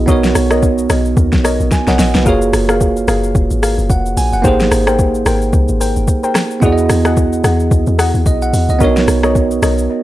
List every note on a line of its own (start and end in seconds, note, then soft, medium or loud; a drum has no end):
0.06 0.34 B1 loud
0.06 2.21 B3 medium
0.06 2.22 D#4 medium
0.06 2.22 F#4 medium
0.06 0.17 A#4 medium
0.06 0.18 C#5 medium
0.06 0.18 D#5 loud
0.06 kick loud
0.06 shaker medium
0.10 1.69 A#4 medium
0.10 1.70 C#5 medium
0.23 snare medium
0.23 shaker medium
0.35 0.88 B1 loud
0.35 cross-stick loud
0.35 open hi-hat medium
0.35 shaker medium
0.51 0.58 A#4 medium
0.51 0.58 C#5 medium
0.51 0.58 D#5 medium
0.51 cross-stick loud
0.51 shaker soft
0.63 kick loud
0.63 shaker medium
0.78 shaker medium
0.89 1.16 B1 loud
0.89 0.99 A#4 medium
0.89 0.99 C#5 medium
0.89 1.00 D#5 medium
0.89 cross-stick loud
0.89 open hi-hat medium
0.89 shaker medium
1.05 shaker medium
1.17 1.32 D#2 loud
1.17 kick loud
1.17 shaker medium
1.32 1.59 B1 medium
1.32 kick medium
1.32 snare medium
1.32 shaker soft
1.44 1.54 A#4 medium
1.44 1.54 C#5 medium
1.44 1.54 D#5 medium
1.44 cross-stick medium
1.44 open hi-hat medium
1.44 shaker loud
1.60 1.71 A#1 medium
1.60 shaker medium
1.72 1.87 G#5 medium
1.72 kick loud
1.72 snare medium
1.72 shaker medium
1.87 1.98 B1 loud
1.87 1.94 A#4 medium
1.87 1.94 C#5 medium
1.87 1.95 D#5 medium
1.87 1.99 F#5 medium
1.87 snare medium
1.87 shaker medium
1.99 2.14 A#1 medium
1.99 2.14 D#5 medium
1.99 snare loud
1.99 open hi-hat medium
1.99 shaker loud
2.15 2.26 B1 medium
2.15 2.41 B4 medium
2.15 snare medium
2.15 shaker soft
2.23 2.52 F#1 loud
2.23 4.39 A#3 medium
2.23 4.40 F4 medium
2.23 4.40 F#4 medium
2.23 2.36 G#4 loud
2.23 2.36 A#4 medium
2.23 2.36 F5 loud
2.23 kick loud
2.23 shaker medium
2.28 4.41 G#4 medium
2.28 4.42 C#5 medium
2.42 shaker medium
2.53 3.06 F#1 loud
2.53 cross-stick loud
2.53 open hi-hat medium
2.53 shaker medium
2.69 3.05 G#4 medium
2.69 3.05 A#4 medium
2.69 3.05 F5 medium
2.69 cross-stick loud
2.69 shaker soft
2.81 kick medium
2.81 shaker medium
2.96 shaker medium
3.08 3.34 F#1 loud
3.08 3.33 G#4 medium
3.08 3.33 A#4 medium
3.08 3.33 F5 medium
3.08 cross-stick loud
3.08 open hi-hat medium
3.08 shaker medium
3.24 shaker medium
3.35 3.50 F1 loud
3.35 kick loud
3.35 shaker medium
3.51 3.77 G#1 loud
3.51 shaker medium
3.62 3.72 G#4 medium
3.62 3.72 A#4 medium
3.62 3.72 F5 medium
3.62 cross-stick medium
3.62 open hi-hat medium
3.62 shaker loud
3.78 3.89 F#1 medium
3.78 shaker medium
3.90 4.16 F1 loud
3.90 4.16 F#5 medium
3.90 kick loud
3.90 shaker medium
4.06 shaker medium
4.17 4.32 A#1 loud
4.17 4.32 G#5 medium
4.17 open hi-hat medium
4.17 shaker medium
4.33 4.44 F1 medium
4.33 4.59 F#5 medium
4.33 shaker soft
4.42 4.70 G#1 loud
4.42 6.57 A#3 medium
4.42 6.58 D#4 medium
4.42 6.59 G4 medium
4.42 4.54 A#4 medium
4.42 4.54 C5 medium
4.42 4.54 G5 loud
4.42 kick loud
4.42 shaker medium
4.46 6.59 G#4 medium
4.46 6.60 C5 medium
4.60 snare medium
4.60 shaker medium
4.71 5.24 G#1 loud
4.71 cross-stick loud
4.71 open hi-hat medium
4.71 shaker medium
4.87 4.94 A#4 medium
4.87 4.94 C5 medium
4.87 4.95 G5 medium
4.87 cross-stick loud
4.87 shaker soft
4.99 kick loud
4.99 shaker medium
5.15 shaker medium
5.26 5.52 G#1 loud
5.26 5.36 A#4 medium
5.26 5.36 C5 medium
5.26 5.36 G5 medium
5.26 cross-stick loud
5.26 open hi-hat medium
5.26 shaker medium
5.42 shaker medium
5.53 5.68 C2 loud
5.53 kick loud
5.53 shaker medium
5.68 5.95 G#1 medium
5.68 shaker medium
5.80 5.90 A#4 medium
5.80 5.90 C5 medium
5.80 5.91 G5 medium
5.80 open hi-hat medium
5.80 shaker loud
5.96 6.07 G1 medium
5.96 shaker medium
6.08 kick loud
6.08 shaker medium
6.23 6.31 A#4 medium
6.23 6.31 C5 medium
6.23 6.31 G5 medium
6.23 shaker medium
6.35 cross-stick loud
6.35 snare medium
6.35 open hi-hat medium
6.35 shaker medium
6.51 shaker soft
6.60 6.88 E2 loud
6.60 8.75 B3 medium
6.60 8.76 E4 medium
6.60 8.77 F#4 medium
6.60 6.72 G#4 loud
6.60 6.72 D#5 medium
6.60 6.72 F#5 loud
6.60 kick loud
6.60 shaker medium
6.65 8.78 G#4 medium
6.65 6.72 D5 medium
6.72 8.25 D#5 medium
6.78 shaker medium
6.89 7.42 E2 loud
6.89 cross-stick loud
6.89 open hi-hat medium
6.89 shaker medium
7.05 7.41 G#4 medium
7.05 7.41 D#5 medium
7.05 7.42 F#5 medium
7.05 cross-stick loud
7.05 shaker medium
7.17 kick loud
7.17 shaker medium
7.33 shaker medium
7.44 7.70 E2 loud
7.44 7.69 G#4 medium
7.44 7.70 D#5 medium
7.44 7.70 F#5 medium
7.44 cross-stick medium
7.44 open hi-hat soft
7.44 shaker medium
7.60 shaker medium
7.71 7.87 D#2 medium
7.71 kick loud
7.71 shaker medium
7.87 8.13 E2 loud
7.87 shaker soft
7.98 8.08 G#4 medium
7.98 8.08 D#5 medium
7.98 8.09 F#5 medium
7.98 cross-stick loud
7.98 open hi-hat medium
7.98 shaker loud
8.14 8.25 D#2 medium
8.14 shaker medium
8.26 8.52 B1 loud
8.26 8.41 D#5 medium
8.26 kick loud
8.26 shaker medium
8.42 8.68 F#5 medium
8.42 shaker medium
8.53 8.68 E2 medium
8.53 open hi-hat medium
8.53 shaker medium
8.69 8.82 C#2 medium
8.69 8.95 D#5 medium
8.69 shaker soft
8.79 9.07 B1 loud
8.79 10.03 B3 medium
8.79 8.88 D4 medium
8.79 10.03 F#4 medium
8.79 8.90 A#4 loud
8.79 8.90 C#5 medium
8.79 8.91 D#5 loud
8.79 kick loud
8.79 shaker medium
8.83 10.03 D#4 medium
8.83 10.03 A#4 medium
8.83 10.03 C#5 medium
8.96 snare medium
8.96 shaker medium
9.08 9.60 B1 loud
9.08 cross-stick loud
9.08 open hi-hat medium
9.08 shaker medium
9.23 9.31 A#4 medium
9.23 9.31 C#5 medium
9.23 9.31 D#5 medium
9.23 cross-stick loud
9.23 shaker medium
9.35 kick loud
9.35 shaker medium
9.51 shaker medium
9.62 9.89 B1 medium
9.62 9.72 A#4 medium
9.62 9.72 C#5 medium
9.62 9.72 D#5 medium
9.62 cross-stick loud
9.62 open hi-hat medium
9.62 shaker medium
9.78 shaker medium